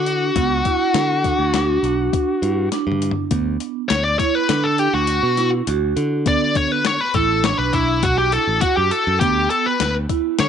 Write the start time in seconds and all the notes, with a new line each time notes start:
Already playing: D3 D4 F#4
0.06 closed hi-hat
0.36 C#2 B3, kick, closed hi-hat
0.65 E4, kick, closed hi-hat
0.94 D3, snare, closed hi-hat
1.24 D4, kick, closed hi-hat
1.39 D2
1.54 D4, snare, closed hi-hat
1.83 B1 D4, closed hi-hat
2.13 kick, closed hi-hat
2.42 G2 E4, closed hi-hat
2.72 D4, snare, closed hi-hat
2.87 G2
2.92 mid tom
3.02 closed hi-hat
3.11 floor tom
3.31 D2 B3, kick, closed hi-hat
3.60 closed hi-hat
3.89 D2 C#5, snare, closed hi-hat
4.04 D5
4.19 E4 C#5, kick, snare, closed hi-hat
4.35 B4
4.49 D3 D4, snare, closed hi-hat
4.64 A4
4.78 D4 G4, closed hi-hat
4.94 D2 F#4
5.07 F#4, closed hi-hat
5.23 B2
5.37 E4, snare, closed hi-hat
5.67 D2 F#4, closed hi-hat
5.96 D3, closed hi-hat
6.26 B3 D5, kick, closed hi-hat
6.55 C#5, kick, closed hi-hat
6.72 B4
6.85 C#5, snare, closed hi-hat
7.01 B4
7.14 A1 E4 A4, kick, closed hi-hat
7.44 D4 C#5, snare, closed hi-hat
7.58 B1 B4
7.73 B1 D4 E4, kick, closed hi-hat
8.03 F#4, kick, closed hi-hat
8.18 G4
8.32 E4 A4, closed hi-hat
8.47 A1
8.61 F#4, kick, closed hi-hat
8.77 F#2 G4
8.91 A4, closed hi-hat
9.07 F#2
9.20 D2 B3 G4, kick, closed hi-hat
9.50 A4, closed hi-hat
9.66 B4
9.80 D2, snare, closed hi-hat
10.09 E4, kick, closed hi-hat
10.39 D3 D4 C#5, snare, closed hi-hat